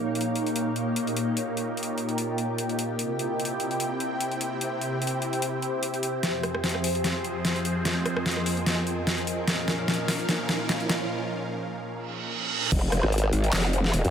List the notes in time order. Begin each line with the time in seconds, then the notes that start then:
Already playing: A#2 A#3 D#4 G4 A#4 C#5 F5
0.11 A#4 G5
0.15 closed hi-hat
0.19 F4, closed hi-hat
0.36 closed hi-hat
0.47 closed hi-hat
0.56 closed hi-hat
0.76 closed hi-hat
0.96 D#5, closed hi-hat
1.07 closed hi-hat
1.17 closed hi-hat
1.37 closed hi-hat
1.57 closed hi-hat
1.77 closed hi-hat
1.83 closed hi-hat
1.98 closed hi-hat
2.09 closed hi-hat
2.18 closed hi-hat
2.38 closed hi-hat
2.58 closed hi-hat
2.69 closed hi-hat
2.79 closed hi-hat
2.99 C3 C4 E4 G4 G5, closed hi-hat
3.19 closed hi-hat
3.36 E5, closed hi-hat
3.45 closed hi-hat
3.56 C5, closed hi-hat
3.71 closed hi-hat
3.80 closed hi-hat
4.00 closed hi-hat
4.21 closed hi-hat
4.32 closed hi-hat
4.41 closed hi-hat
4.61 closed hi-hat
4.81 closed hi-hat
5.02 closed hi-hat
5.07 closed hi-hat
5.22 closed hi-hat
5.33 closed hi-hat
5.42 closed hi-hat
5.62 closed hi-hat
5.83 closed hi-hat
5.94 closed hi-hat
6.03 closed hi-hat
6.23 F2 F3 C4 F4 G#4 C5, snare, closed hi-hat, riser
6.43 cross-stick, closed hi-hat
6.55 cross-stick
6.60 A#4 D#5, snare, closed hi-hat
6.69 closed hi-hat
6.75 cross-stick
6.84 open hi-hat
6.95 closed hi-hat
7.04 snare, closed hi-hat
7.24 closed hi-hat
7.45 snare, closed hi-hat
7.56 closed hi-hat
7.65 closed hi-hat
7.70 G#5
7.85 snare, closed hi-hat
8.06 cross-stick, closed hi-hat
8.17 cross-stick
8.26 snare, closed hi-hat
8.31 closed hi-hat
8.37 cross-stick
8.46 open hi-hat
8.57 closed hi-hat
8.66 snare, closed hi-hat
8.87 closed hi-hat
9.07 snare, closed hi-hat
9.18 closed hi-hat
9.27 closed hi-hat
9.47 A#2 F3 A#3 C#4 A#4 F5, snare, closed hi-hat
9.58 D#4
9.68 snare, closed hi-hat
9.88 snare, closed hi-hat
9.94 closed hi-hat
10.08 snare, open hi-hat
10.19 closed hi-hat
10.29 snare, closed hi-hat
10.49 snare, closed hi-hat
10.69 snare, closed hi-hat
10.80 closed hi-hat
10.89 snare, closed hi-hat
11.91 reverse cymbal
12.72 F1 C4, kick, closed hi-hat, crash
12.92 cross-stick, closed hi-hat
13.03 G#1, cross-stick
13.12 closed hi-hat
13.18 closed hi-hat
13.24 cross-stick
13.33 G#1, closed hi-hat
13.44 closed hi-hat
13.53 F1, snare, clap, closed hi-hat
13.73 closed hi-hat
13.84 snare
13.94 D#1, closed hi-hat
14.05 F2, closed hi-hat